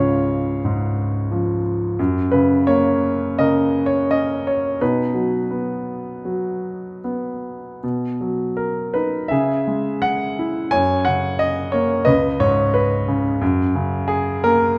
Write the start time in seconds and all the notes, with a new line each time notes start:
Already playing: C#2 G#2 C#3 F4 B4 C#5 F5
0.65 G#2
1.31 F3
1.99 F#2
2.31 C#3 B4
2.67 A#3 C#5
3.39 C#3 A#4 D#5
3.86 C#5
4.11 C#4 D#5
4.47 C#5
4.81 B2 D#4 B4
5.14 F#3
5.51 B3
6.25 F#3
7.04 B3
7.83 B2
8.21 F#3
8.57 A#4
8.94 D#4 B4
9.28 C#3 G#4 E5
9.67 G#3
10.02 F#5
10.39 E4
10.71 F#2 C#5 G#5
11.05 C#3 F#5
11.39 D#5
11.72 A#3 C#5
12.05 C#2 B4 D#5
12.40 G#2 C#5
12.74 B4
13.08 C#3
13.41 F#2
13.75 C#3
14.08 G#4
14.44 A#3 A#4